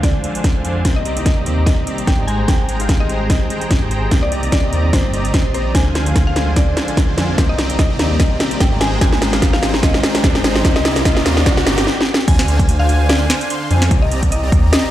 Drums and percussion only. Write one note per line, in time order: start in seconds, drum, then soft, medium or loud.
0.03 kick medium
0.03 snare soft
0.03 closed hi-hat medium
0.24 closed hi-hat medium
0.35 closed hi-hat medium
0.44 kick medium
0.44 snare soft
0.44 closed hi-hat medium
0.65 closed hi-hat medium
0.85 kick medium
0.85 snare medium
0.85 closed hi-hat medium
1.05 closed hi-hat medium
1.17 closed hi-hat medium
1.26 kick medium
1.26 snare medium
1.26 closed hi-hat medium
1.46 closed hi-hat medium
1.67 kick medium
1.67 snare medium
1.67 closed hi-hat medium
1.87 closed hi-hat medium
1.98 closed hi-hat medium
2.07 kick medium
2.07 snare medium
2.07 closed hi-hat medium
2.28 closed hi-hat medium
2.48 kick medium
2.48 snare medium
2.48 closed hi-hat medium
2.69 closed hi-hat medium
2.80 closed hi-hat medium
2.89 kick medium
2.89 snare medium
2.89 closed hi-hat medium
3.09 closed hi-hat medium
3.30 kick loud
3.30 snare medium
3.30 closed hi-hat medium
3.50 closed hi-hat medium
3.61 closed hi-hat medium
3.71 kick medium
3.71 snare medium
3.71 closed hi-hat medium
3.91 closed hi-hat medium
4.11 kick medium
4.11 snare medium
4.11 closed hi-hat medium
4.32 closed hi-hat medium
4.43 closed hi-hat medium
4.52 kick loud
4.52 snare medium
4.52 closed hi-hat medium
4.73 closed hi-hat medium
4.93 kick medium
4.93 snare medium
4.93 closed hi-hat medium
5.14 closed hi-hat medium
5.25 closed hi-hat medium
5.34 kick medium
5.34 snare medium
5.34 closed hi-hat medium
5.54 closed hi-hat medium
5.75 kick loud
5.75 snare medium
5.75 closed hi-hat medium
5.95 snare medium
5.95 closed hi-hat medium
6.06 closed hi-hat medium
6.16 kick medium
6.16 snare medium
6.16 closed hi-hat medium
6.36 snare medium
6.36 closed hi-hat medium
6.56 kick medium
6.56 snare medium
6.56 closed hi-hat medium
6.77 snare medium
6.77 closed hi-hat medium
6.88 closed hi-hat medium
6.97 kick loud
6.97 snare medium
6.97 closed hi-hat medium
7.18 snare medium
7.18 closed hi-hat medium
7.38 kick loud
7.38 snare medium
7.38 closed hi-hat medium
7.58 snare medium
7.58 closed hi-hat medium
7.70 closed hi-hat medium
7.79 kick medium
7.79 snare medium
7.79 closed hi-hat medium
7.99 snare medium
7.99 closed hi-hat medium
8.20 kick medium
8.20 snare medium
8.20 closed hi-hat medium
8.40 snare medium
8.40 closed hi-hat medium
8.51 closed hi-hat medium
8.60 kick loud
8.60 snare medium
8.60 closed hi-hat medium
8.81 snare medium
8.81 closed hi-hat medium
9.01 kick loud
9.01 snare loud
9.01 closed hi-hat medium
9.12 snare medium
9.22 snare medium
9.22 closed hi-hat medium
9.33 snare medium
9.33 closed hi-hat medium
9.42 kick loud
9.42 snare medium
9.42 closed hi-hat medium
9.53 snare medium
9.63 snare medium
9.63 closed hi-hat medium
9.74 snare medium
9.83 kick loud
9.83 snare loud
9.83 closed hi-hat medium
9.94 snare medium
10.03 snare loud
10.03 closed hi-hat medium
10.15 snare medium
10.15 closed hi-hat medium
10.24 kick loud
10.24 snare loud
10.24 closed hi-hat medium
10.35 snare medium
10.44 snare loud
10.44 closed hi-hat medium
10.56 snare medium
10.64 kick loud
10.64 snare loud
10.64 closed hi-hat medium
10.76 snare medium
10.85 snare loud
10.85 closed hi-hat medium
10.96 snare medium
10.96 closed hi-hat medium
11.05 kick loud
11.05 snare loud
11.05 closed hi-hat medium
11.17 snare medium
11.26 snare loud
11.26 closed hi-hat medium
11.37 snare medium
11.46 kick loud
11.46 snare loud
11.46 closed hi-hat medium
11.57 snare medium
11.67 snare loud
11.67 closed hi-hat medium
11.78 snare loud
11.78 closed hi-hat medium
11.87 snare medium
12.01 snare medium
12.14 snare loud
12.28 kick loud
12.28 closed hi-hat medium
12.28 crash loud
12.39 snare medium
12.48 closed hi-hat medium
12.59 kick loud
12.59 closed hi-hat medium
12.69 closed hi-hat medium
12.89 closed hi-hat medium
13.09 snare loud
13.09 closed hi-hat medium
13.30 snare medium
13.30 closed hi-hat medium
13.41 closed hi-hat medium
13.50 closed hi-hat medium
13.71 closed hi-hat medium
13.82 snare medium
13.91 kick loud
13.91 closed hi-hat medium
14.11 closed hi-hat medium
14.23 kick medium
14.23 closed hi-hat medium
14.32 closed hi-hat medium
14.52 kick loud
14.52 closed hi-hat medium
14.73 snare loud
14.73 closed hi-hat medium